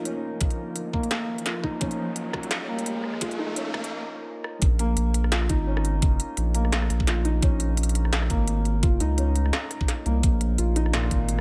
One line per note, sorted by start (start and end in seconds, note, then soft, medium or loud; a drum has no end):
0.00 4.62 F3 medium
0.00 0.93 A#3 medium
0.00 4.62 A#3 medium
0.00 4.62 C#4 medium
0.00 1.63 D#4 medium
0.00 1.46 F4 medium
0.00 4.62 A#4 medium
0.00 riser medium
0.05 0.17 C#4 medium
0.05 closed hi-hat medium
0.41 kick loud
0.41 closed hi-hat medium
0.51 closed hi-hat soft
0.76 closed hi-hat medium
0.93 1.44 A#3 loud
0.93 kick medium
1.03 closed hi-hat soft
1.11 snare loud
1.11 closed hi-hat medium
1.38 closed hi-hat soft
1.46 1.62 F4 medium
1.46 snare medium
1.46 closed hi-hat medium
1.63 1.79 D#4 loud
1.63 kick medium
1.81 1.92 C#4 medium
1.81 kick loud
1.81 closed hi-hat medium
1.91 closed hi-hat soft
2.16 closed hi-hat medium
2.33 kick medium
2.33 cross-stick medium
2.43 closed hi-hat soft
2.51 snare loud
2.51 closed hi-hat medium
2.68 3.20 A#3 loud
2.79 closed hi-hat soft
2.86 closed hi-hat medium
3.04 cross-stick soft
3.14 cross-stick soft
3.21 3.37 F4 medium
3.21 kick loud
3.21 closed hi-hat medium
3.31 closed hi-hat soft
3.39 3.55 D#4 loud
3.56 3.68 C#4 medium
3.56 closed hi-hat medium
3.74 kick medium
3.74 cross-stick medium
3.84 closed hi-hat soft
4.44 cross-stick medium
4.62 4.96 A#1 medium
4.62 kick loud
4.62 closed hi-hat medium
4.79 5.31 A#3 loud
4.79 closed hi-hat medium
4.97 5.48 A#1 loud
4.97 closed hi-hat medium
5.14 closed hi-hat medium
5.24 cross-stick soft
5.32 5.48 F4 medium
5.32 snare loud
5.32 closed hi-hat medium
5.42 cross-stick medium
5.49 5.99 G#1 medium
5.49 5.65 D#4 loud
5.49 kick medium
5.49 closed hi-hat medium
5.67 5.78 C#4 medium
5.77 cross-stick medium
5.85 closed hi-hat soft
5.99 6.19 G1 medium
5.99 kick loud
5.99 closed hi-hat medium
6.20 closed hi-hat medium
6.37 6.89 A#1 medium
6.37 closed hi-hat medium
6.55 7.06 A#3 loud
6.55 closed hi-hat medium
6.65 cross-stick soft
6.72 snare loud
6.72 closed hi-hat medium
6.82 cross-stick medium
6.90 7.41 A#1 loud
6.90 cross-stick soft
6.90 closed hi-hat medium
7.00 kick medium
7.07 7.23 F4 medium
7.07 snare medium
7.07 closed hi-hat medium
7.25 7.41 D#4 loud
7.25 closed hi-hat soft
7.42 7.77 A#1 loud
7.42 7.53 C#4 medium
7.42 kick loud
7.42 closed hi-hat medium
7.60 closed hi-hat medium
7.77 8.29 A#1 medium
7.77 closed hi-hat medium
7.83 closed hi-hat medium
7.89 closed hi-hat soft
7.95 closed hi-hat medium
8.05 cross-stick soft
8.13 snare loud
8.13 closed hi-hat medium
8.22 cross-stick medium
8.30 8.79 G#1 loud
8.30 8.81 A#3 loud
8.30 kick medium
8.30 closed hi-hat medium
8.48 closed hi-hat medium
8.65 closed hi-hat soft
8.79 8.99 G1 loud
8.79 8.99 F4 medium
8.79 kick loud
8.79 closed hi-hat medium
9.00 9.52 C#2 medium
9.00 9.16 D#4 loud
9.00 closed hi-hat medium
9.18 9.29 C#4 medium
9.18 closed hi-hat medium
9.36 closed hi-hat medium
9.46 cross-stick soft
9.53 snare loud
9.53 closed hi-hat medium
9.71 cross-stick soft
9.71 closed hi-hat medium
9.81 kick medium
9.88 snare medium
9.88 closed hi-hat medium
10.06 10.22 C2 loud
10.06 10.57 A#3 loud
10.06 closed hi-hat soft
10.23 10.57 A#1 loud
10.23 kick loud
10.23 closed hi-hat medium
10.41 closed hi-hat medium
10.58 11.10 A#1 medium
10.58 10.74 F4 medium
10.58 closed hi-hat medium
10.76 10.92 D#4 loud
10.76 closed hi-hat medium
10.86 cross-stick soft
10.93 11.10 A#2 loud
10.93 snare loud
10.93 closed hi-hat medium
11.03 cross-stick medium
11.11 11.41 G#1 loud
11.11 kick medium
11.11 closed hi-hat medium
11.29 closed hi-hat medium